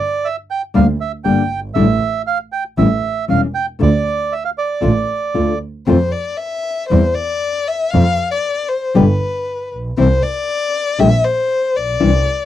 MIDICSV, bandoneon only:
0, 0, Header, 1, 2, 480
1, 0, Start_track
1, 0, Tempo, 506329
1, 1667, Time_signature, 4, 2, 24, 8
1, 3111, Tempo, 517688
1, 7431, Tempo, 507614
1, 11697, End_track
2, 0, Start_track
2, 0, Title_t, "Bandoneon"
2, 0, Program_c, 0, 23
2, 0, Note_on_c, 0, 74, 76
2, 236, Note_on_c, 0, 76, 77
2, 260, Note_off_c, 0, 74, 0
2, 343, Note_off_c, 0, 76, 0
2, 480, Note_on_c, 0, 79, 75
2, 585, Note_off_c, 0, 79, 0
2, 717, Note_on_c, 0, 77, 79
2, 822, Note_off_c, 0, 77, 0
2, 955, Note_on_c, 0, 76, 73
2, 1061, Note_off_c, 0, 76, 0
2, 1178, Note_on_c, 0, 79, 80
2, 1516, Note_off_c, 0, 79, 0
2, 1652, Note_on_c, 0, 76, 82
2, 2106, Note_off_c, 0, 76, 0
2, 2152, Note_on_c, 0, 77, 75
2, 2259, Note_off_c, 0, 77, 0
2, 2393, Note_on_c, 0, 79, 73
2, 2501, Note_off_c, 0, 79, 0
2, 2637, Note_on_c, 0, 76, 77
2, 3082, Note_off_c, 0, 76, 0
2, 3128, Note_on_c, 0, 77, 69
2, 3231, Note_off_c, 0, 77, 0
2, 3356, Note_on_c, 0, 79, 70
2, 3462, Note_off_c, 0, 79, 0
2, 3612, Note_on_c, 0, 74, 72
2, 4077, Note_on_c, 0, 76, 71
2, 4089, Note_off_c, 0, 74, 0
2, 4181, Note_off_c, 0, 76, 0
2, 4192, Note_on_c, 0, 77, 65
2, 4243, Note_off_c, 0, 77, 0
2, 4315, Note_on_c, 0, 74, 61
2, 5247, Note_off_c, 0, 74, 0
2, 11697, End_track
0, 0, End_of_file